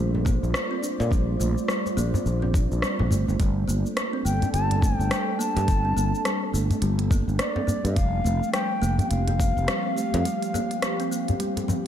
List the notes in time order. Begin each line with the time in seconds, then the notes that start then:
Already playing: A#1 G3 D4 F4 A4 C5 D5
0.15 djembe tone
0.25 A#3, kick, djembe slap, djembe tone, djembe bass, cabasa
0.43 A#1, cabasa
0.54 cross-stick, cabasa
0.71 C4
0.83 D4, cabasa
1.00 A#2, djembe slap, cabasa
1.11 A#1 G3, kick, cabasa
1.40 A#1 A3, djembe slap, cabasa
1.58 cabasa
1.68 G3, cross-stick, cabasa
1.86 djembe slap, cabasa
1.97 A#1 A#3, cabasa
2.14 djembe bass, cabasa
2.26 A#1, cabasa
2.42 C4, djembe tone
2.54 D4, kick, djembe bass, cabasa
2.72 A#1, cabasa
2.82 G3, cross-stick, cabasa
2.99 A#1, djembe tone
3.11 G1 A3, djembe bass, cabasa
3.28 G1, djembe tone, cabasa
3.39 G1 G3, kick, closed hi-hat, cabasa
3.49 D4
3.63 A4
3.68 G1 A#3, cabasa
3.86 cabasa
3.97 cross-stick, closed hi-hat, cabasa
4.13 C4
4.25 G1 A#3 G5, cabasa
4.42 closed hi-hat, djembe bass, cabasa
4.53 G1 G3 A5, closed hi-hat, cabasa
4.71 closed hi-hat, djembe tone
4.82 A3 G5, kick, djembe slap, djembe tone, djembe bass, cabasa
4.99 G1, cabasa
5.11 G3, cross-stick, closed hi-hat, cabasa
5.39 A#3 A5, cabasa
5.56 G2, closed hi-hat, djembe slap, cabasa
5.68 G1, kick, closed hi-hat, cabasa
5.85 C4
5.97 G1 A#3, cabasa
6.15 cabasa
6.25 G3, cross-stick, closed hi-hat, cabasa
6.53 G1 A3, cabasa
6.71 closed hi-hat, djembe bass, cabasa
6.82 G1 G3, closed hi-hat, cabasa
6.99 closed hi-hat
7.10 A#3, kick, djembe bass, cabasa
7.28 G1, cabasa
7.39 D5, cross-stick, closed hi-hat, cabasa
7.56 C4, djembe tone
7.67 A#3, djembe bass, cabasa
7.84 G2, closed hi-hat, djembe tone, cabasa
7.95 F1 F3 G3 F5, kick, closed hi-hat, cabasa
8.20 C4
8.24 F1 A3, cabasa
8.43 cabasa
8.53 G3 G5, cross-stick, closed hi-hat, cabasa
8.62 G4
8.82 F1 A#3, cabasa
8.99 closed hi-hat, djembe bass, cabasa
9.06 F5 G5
9.11 F1, closed hi-hat, cabasa
9.28 C4, closed hi-hat, djembe tone
9.39 A#3, kick, djembe slap, djembe tone, djembe bass, cabasa
9.57 F1, cabasa
9.68 G3, cross-stick, closed hi-hat, cabasa
9.96 A3, cabasa
10.14 F2, closed hi-hat, djembe slap, cabasa
10.25 G3, closed hi-hat, cabasa
10.42 closed hi-hat, cabasa
10.54 A#3, djembe slap, djembe tone, cabasa
10.71 closed hi-hat, cabasa
10.82 cross-stick, closed hi-hat, cabasa
11.00 C4, closed hi-hat, cabasa
11.11 A#3, cabasa
11.28 closed hi-hat, djembe bass, cabasa
11.40 G3, closed hi-hat, cabasa
11.57 closed hi-hat, djembe tone, cabasa
11.68 F3, djembe tone, djembe bass, cabasa